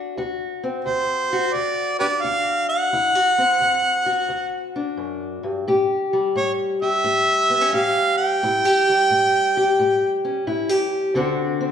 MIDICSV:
0, 0, Header, 1, 3, 480
1, 0, Start_track
1, 0, Tempo, 685714
1, 116, Time_signature, 4, 2, 24, 8
1, 8201, End_track
2, 0, Start_track
2, 0, Title_t, "Harmonica"
2, 0, Program_c, 0, 22
2, 594, Note_on_c, 0, 72, 83
2, 1075, Note_on_c, 0, 74, 94
2, 1086, Note_off_c, 0, 72, 0
2, 1392, Note_off_c, 0, 74, 0
2, 1396, Note_on_c, 0, 67, 61
2, 1396, Note_on_c, 0, 71, 61
2, 1396, Note_on_c, 0, 74, 87
2, 1440, Note_off_c, 0, 71, 0
2, 1445, Note_off_c, 0, 67, 0
2, 1556, Note_on_c, 0, 77, 94
2, 1566, Note_off_c, 0, 74, 0
2, 1877, Note_off_c, 0, 77, 0
2, 1885, Note_on_c, 0, 78, 105
2, 3297, Note_off_c, 0, 78, 0
2, 4459, Note_on_c, 0, 73, 75
2, 4571, Note_off_c, 0, 73, 0
2, 4780, Note_on_c, 0, 76, 94
2, 5422, Note_on_c, 0, 77, 96
2, 5432, Note_off_c, 0, 76, 0
2, 5721, Note_off_c, 0, 77, 0
2, 5726, Note_on_c, 0, 79, 104
2, 7134, Note_off_c, 0, 79, 0
2, 8201, End_track
3, 0, Start_track
3, 0, Title_t, "Steel-string acoustic guitar"
3, 0, Program_c, 1, 25
3, 0, Note_on_c, 1, 38, 71
3, 0, Note_on_c, 1, 60, 57
3, 0, Note_on_c, 1, 62, 49
3, 0, Note_on_c, 1, 66, 67
3, 90, Note_off_c, 1, 38, 0
3, 122, Note_off_c, 1, 62, 0
3, 122, Note_on_c, 1, 38, 75
3, 123, Note_off_c, 1, 66, 0
3, 126, Note_on_c, 1, 66, 69
3, 143, Note_off_c, 1, 60, 0
3, 445, Note_on_c, 1, 60, 56
3, 568, Note_off_c, 1, 38, 0
3, 600, Note_on_c, 1, 38, 76
3, 926, Note_off_c, 1, 66, 0
3, 929, Note_on_c, 1, 66, 64
3, 1048, Note_off_c, 1, 38, 0
3, 1083, Note_on_c, 1, 38, 69
3, 1404, Note_on_c, 1, 62, 58
3, 1530, Note_off_c, 1, 38, 0
3, 1562, Note_off_c, 1, 66, 0
3, 1566, Note_on_c, 1, 38, 72
3, 1571, Note_on_c, 1, 66, 67
3, 2013, Note_off_c, 1, 38, 0
3, 2026, Note_off_c, 1, 62, 0
3, 2028, Note_off_c, 1, 60, 0
3, 2028, Note_off_c, 1, 66, 0
3, 2050, Note_on_c, 1, 38, 72
3, 2051, Note_on_c, 1, 64, 69
3, 2206, Note_off_c, 1, 64, 0
3, 2206, Note_on_c, 1, 66, 56
3, 2367, Note_on_c, 1, 60, 60
3, 2495, Note_off_c, 1, 38, 0
3, 2524, Note_on_c, 1, 38, 74
3, 2835, Note_off_c, 1, 66, 0
3, 2843, Note_on_c, 1, 66, 62
3, 2972, Note_off_c, 1, 38, 0
3, 3001, Note_on_c, 1, 38, 71
3, 3330, Note_on_c, 1, 62, 57
3, 3451, Note_off_c, 1, 38, 0
3, 3482, Note_on_c, 1, 42, 60
3, 3800, Note_off_c, 1, 42, 0
3, 3803, Note_on_c, 1, 43, 64
3, 3947, Note_off_c, 1, 66, 0
3, 3949, Note_off_c, 1, 60, 0
3, 3950, Note_off_c, 1, 62, 0
3, 3966, Note_off_c, 1, 43, 0
3, 3973, Note_on_c, 1, 45, 74
3, 3977, Note_on_c, 1, 67, 71
3, 4292, Note_on_c, 1, 55, 56
3, 4417, Note_off_c, 1, 45, 0
3, 4449, Note_on_c, 1, 45, 74
3, 4771, Note_off_c, 1, 67, 0
3, 4774, Note_on_c, 1, 67, 60
3, 4895, Note_off_c, 1, 45, 0
3, 4930, Note_on_c, 1, 45, 73
3, 5250, Note_on_c, 1, 59, 60
3, 5328, Note_off_c, 1, 59, 0
3, 5328, Note_on_c, 1, 61, 46
3, 5375, Note_off_c, 1, 45, 0
3, 5408, Note_off_c, 1, 67, 0
3, 5411, Note_on_c, 1, 45, 71
3, 5416, Note_on_c, 1, 67, 65
3, 5856, Note_off_c, 1, 45, 0
3, 5871, Note_off_c, 1, 67, 0
3, 5887, Note_off_c, 1, 61, 0
3, 5901, Note_on_c, 1, 45, 76
3, 5905, Note_on_c, 1, 64, 67
3, 6055, Note_off_c, 1, 64, 0
3, 6055, Note_on_c, 1, 67, 61
3, 6207, Note_off_c, 1, 55, 0
3, 6226, Note_on_c, 1, 55, 59
3, 6340, Note_off_c, 1, 45, 0
3, 6373, Note_on_c, 1, 45, 73
3, 6687, Note_off_c, 1, 67, 0
3, 6700, Note_on_c, 1, 67, 65
3, 6815, Note_off_c, 1, 45, 0
3, 6857, Note_on_c, 1, 45, 76
3, 7172, Note_on_c, 1, 61, 57
3, 7297, Note_off_c, 1, 45, 0
3, 7328, Note_off_c, 1, 67, 0
3, 7329, Note_on_c, 1, 45, 71
3, 7331, Note_on_c, 1, 64, 66
3, 7485, Note_off_c, 1, 64, 0
3, 7485, Note_on_c, 1, 67, 55
3, 7772, Note_off_c, 1, 45, 0
3, 7787, Note_off_c, 1, 61, 0
3, 7800, Note_on_c, 1, 38, 77
3, 7803, Note_off_c, 1, 67, 0
3, 7806, Note_on_c, 1, 50, 60
3, 7807, Note_off_c, 1, 55, 0
3, 7810, Note_on_c, 1, 60, 66
3, 7814, Note_on_c, 1, 62, 66
3, 7821, Note_on_c, 1, 66, 70
3, 8121, Note_off_c, 1, 60, 0
3, 8124, Note_on_c, 1, 60, 61
3, 8201, Note_off_c, 1, 38, 0
3, 8201, Note_off_c, 1, 50, 0
3, 8201, Note_off_c, 1, 60, 0
3, 8201, Note_off_c, 1, 62, 0
3, 8201, Note_off_c, 1, 66, 0
3, 8201, End_track
0, 0, End_of_file